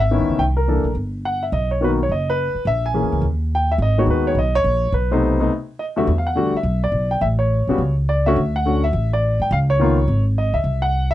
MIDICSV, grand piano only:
0, 0, Header, 1, 2, 480
1, 0, Start_track
1, 0, Tempo, 284765
1, 664, Time_signature, 4, 2, 24, 8
1, 18781, End_track
2, 0, Start_track
2, 0, Title_t, "Grand piano"
2, 0, Program_c, 0, 0
2, 0, Note_on_c, 0, 76, 92
2, 189, Note_on_c, 0, 51, 62
2, 190, Note_on_c, 0, 59, 51
2, 199, Note_on_c, 0, 61, 52
2, 204, Note_on_c, 0, 64, 63
2, 658, Note_on_c, 0, 79, 91
2, 665, Note_off_c, 0, 51, 0
2, 665, Note_off_c, 0, 59, 0
2, 670, Note_off_c, 0, 61, 0
2, 672, Note_off_c, 0, 64, 0
2, 679, Note_off_c, 0, 76, 0
2, 742, Note_off_c, 0, 79, 0
2, 956, Note_on_c, 0, 70, 69
2, 1145, Note_on_c, 0, 52, 49
2, 1156, Note_on_c, 0, 62, 41
2, 1160, Note_on_c, 0, 58, 46
2, 1161, Note_on_c, 0, 69, 59
2, 1408, Note_off_c, 0, 52, 0
2, 1413, Note_off_c, 0, 62, 0
2, 1416, Note_off_c, 0, 58, 0
2, 1416, Note_off_c, 0, 69, 0
2, 1570, Note_off_c, 0, 70, 0
2, 2114, Note_on_c, 0, 78, 77
2, 2407, Note_on_c, 0, 76, 62
2, 2408, Note_off_c, 0, 78, 0
2, 2578, Note_on_c, 0, 75, 76
2, 2586, Note_off_c, 0, 76, 0
2, 2850, Note_off_c, 0, 75, 0
2, 2886, Note_on_c, 0, 73, 65
2, 3048, Note_on_c, 0, 51, 54
2, 3056, Note_on_c, 0, 58, 50
2, 3064, Note_off_c, 0, 73, 0
2, 3075, Note_on_c, 0, 59, 49
2, 3077, Note_on_c, 0, 66, 63
2, 3107, Note_on_c, 0, 71, 74
2, 3191, Note_off_c, 0, 71, 0
2, 3315, Note_off_c, 0, 51, 0
2, 3318, Note_off_c, 0, 58, 0
2, 3328, Note_off_c, 0, 59, 0
2, 3329, Note_off_c, 0, 66, 0
2, 3419, Note_on_c, 0, 73, 70
2, 3554, Note_off_c, 0, 73, 0
2, 3567, Note_on_c, 0, 75, 72
2, 3851, Note_off_c, 0, 75, 0
2, 3870, Note_on_c, 0, 71, 92
2, 4463, Note_off_c, 0, 71, 0
2, 4505, Note_on_c, 0, 76, 99
2, 4799, Note_off_c, 0, 76, 0
2, 4815, Note_on_c, 0, 80, 79
2, 4955, Note_on_c, 0, 52, 51
2, 4959, Note_on_c, 0, 58, 42
2, 4965, Note_on_c, 0, 61, 42
2, 4970, Note_on_c, 0, 68, 54
2, 5415, Note_off_c, 0, 80, 0
2, 5438, Note_off_c, 0, 52, 0
2, 5441, Note_off_c, 0, 58, 0
2, 5443, Note_off_c, 0, 61, 0
2, 5446, Note_off_c, 0, 68, 0
2, 5982, Note_on_c, 0, 79, 82
2, 6230, Note_off_c, 0, 79, 0
2, 6262, Note_on_c, 0, 76, 87
2, 6335, Note_off_c, 0, 76, 0
2, 6444, Note_on_c, 0, 75, 84
2, 6700, Note_off_c, 0, 75, 0
2, 6709, Note_on_c, 0, 51, 59
2, 6713, Note_on_c, 0, 56, 49
2, 6723, Note_on_c, 0, 59, 54
2, 6725, Note_on_c, 0, 66, 67
2, 6726, Note_on_c, 0, 73, 67
2, 6802, Note_off_c, 0, 73, 0
2, 6919, Note_on_c, 0, 71, 72
2, 7201, Note_on_c, 0, 73, 78
2, 7206, Note_off_c, 0, 71, 0
2, 7331, Note_off_c, 0, 51, 0
2, 7333, Note_off_c, 0, 56, 0
2, 7338, Note_off_c, 0, 59, 0
2, 7339, Note_off_c, 0, 66, 0
2, 7379, Note_off_c, 0, 73, 0
2, 7394, Note_on_c, 0, 75, 81
2, 7676, Note_on_c, 0, 73, 104
2, 7684, Note_off_c, 0, 75, 0
2, 8287, Note_off_c, 0, 73, 0
2, 8326, Note_on_c, 0, 71, 71
2, 8617, Note_on_c, 0, 48, 59
2, 8629, Note_on_c, 0, 57, 64
2, 8629, Note_on_c, 0, 59, 63
2, 8629, Note_on_c, 0, 72, 58
2, 8631, Note_off_c, 0, 71, 0
2, 8644, Note_on_c, 0, 63, 77
2, 9071, Note_off_c, 0, 48, 0
2, 9077, Note_off_c, 0, 57, 0
2, 9077, Note_off_c, 0, 59, 0
2, 9084, Note_off_c, 0, 63, 0
2, 9096, Note_on_c, 0, 48, 62
2, 9105, Note_on_c, 0, 57, 58
2, 9109, Note_on_c, 0, 59, 59
2, 9123, Note_on_c, 0, 63, 74
2, 9244, Note_off_c, 0, 72, 0
2, 9265, Note_off_c, 0, 48, 0
2, 9270, Note_off_c, 0, 57, 0
2, 9272, Note_off_c, 0, 59, 0
2, 9279, Note_off_c, 0, 63, 0
2, 9764, Note_on_c, 0, 75, 69
2, 9849, Note_off_c, 0, 75, 0
2, 10050, Note_on_c, 0, 40, 59
2, 10063, Note_on_c, 0, 50, 61
2, 10068, Note_on_c, 0, 66, 71
2, 10069, Note_on_c, 0, 76, 70
2, 10071, Note_on_c, 0, 55, 56
2, 10073, Note_on_c, 0, 57, 66
2, 10223, Note_off_c, 0, 40, 0
2, 10230, Note_off_c, 0, 50, 0
2, 10232, Note_off_c, 0, 66, 0
2, 10234, Note_off_c, 0, 55, 0
2, 10235, Note_off_c, 0, 57, 0
2, 10378, Note_off_c, 0, 76, 0
2, 10421, Note_on_c, 0, 77, 64
2, 10557, Note_off_c, 0, 77, 0
2, 10561, Note_on_c, 0, 78, 70
2, 10712, Note_on_c, 0, 50, 67
2, 10724, Note_on_c, 0, 55, 59
2, 10729, Note_on_c, 0, 57, 60
2, 10736, Note_on_c, 0, 66, 74
2, 10989, Note_off_c, 0, 50, 0
2, 10995, Note_off_c, 0, 55, 0
2, 10998, Note_off_c, 0, 57, 0
2, 11001, Note_off_c, 0, 66, 0
2, 11050, Note_off_c, 0, 78, 0
2, 11068, Note_on_c, 0, 76, 79
2, 11497, Note_off_c, 0, 76, 0
2, 11524, Note_on_c, 0, 74, 81
2, 11985, Note_on_c, 0, 79, 76
2, 12012, Note_off_c, 0, 74, 0
2, 12162, Note_on_c, 0, 76, 81
2, 12178, Note_off_c, 0, 79, 0
2, 12246, Note_off_c, 0, 76, 0
2, 12452, Note_on_c, 0, 73, 73
2, 12960, Note_on_c, 0, 55, 55
2, 12963, Note_on_c, 0, 49, 65
2, 12977, Note_on_c, 0, 59, 55
2, 12985, Note_on_c, 0, 66, 64
2, 13122, Note_off_c, 0, 55, 0
2, 13124, Note_off_c, 0, 49, 0
2, 13131, Note_off_c, 0, 59, 0
2, 13135, Note_off_c, 0, 66, 0
2, 13357, Note_off_c, 0, 73, 0
2, 13635, Note_on_c, 0, 74, 80
2, 13905, Note_off_c, 0, 74, 0
2, 13928, Note_on_c, 0, 76, 83
2, 13932, Note_on_c, 0, 50, 67
2, 13948, Note_on_c, 0, 57, 67
2, 13951, Note_on_c, 0, 66, 88
2, 13957, Note_on_c, 0, 61, 76
2, 14090, Note_off_c, 0, 50, 0
2, 14098, Note_off_c, 0, 57, 0
2, 14099, Note_off_c, 0, 66, 0
2, 14102, Note_off_c, 0, 61, 0
2, 14418, Note_off_c, 0, 76, 0
2, 14426, Note_on_c, 0, 78, 83
2, 14587, Note_on_c, 0, 57, 48
2, 14593, Note_on_c, 0, 50, 52
2, 14607, Note_on_c, 0, 66, 58
2, 14608, Note_on_c, 0, 61, 44
2, 14852, Note_off_c, 0, 57, 0
2, 14855, Note_off_c, 0, 50, 0
2, 14862, Note_off_c, 0, 61, 0
2, 14862, Note_off_c, 0, 66, 0
2, 14899, Note_on_c, 0, 76, 85
2, 14907, Note_off_c, 0, 78, 0
2, 15337, Note_off_c, 0, 76, 0
2, 15396, Note_on_c, 0, 74, 86
2, 15826, Note_off_c, 0, 74, 0
2, 15873, Note_on_c, 0, 79, 81
2, 16029, Note_off_c, 0, 79, 0
2, 16053, Note_on_c, 0, 77, 89
2, 16138, Note_off_c, 0, 77, 0
2, 16348, Note_on_c, 0, 73, 86
2, 16510, Note_on_c, 0, 51, 67
2, 16527, Note_on_c, 0, 58, 52
2, 16537, Note_on_c, 0, 59, 56
2, 16539, Note_on_c, 0, 65, 68
2, 16774, Note_off_c, 0, 51, 0
2, 16783, Note_off_c, 0, 58, 0
2, 16788, Note_off_c, 0, 59, 0
2, 16789, Note_off_c, 0, 65, 0
2, 17229, Note_off_c, 0, 73, 0
2, 17498, Note_on_c, 0, 75, 78
2, 17764, Note_on_c, 0, 76, 82
2, 17787, Note_off_c, 0, 75, 0
2, 18239, Note_on_c, 0, 78, 84
2, 18257, Note_off_c, 0, 76, 0
2, 18686, Note_off_c, 0, 78, 0
2, 18722, Note_on_c, 0, 76, 98
2, 18781, Note_off_c, 0, 76, 0
2, 18781, End_track
0, 0, End_of_file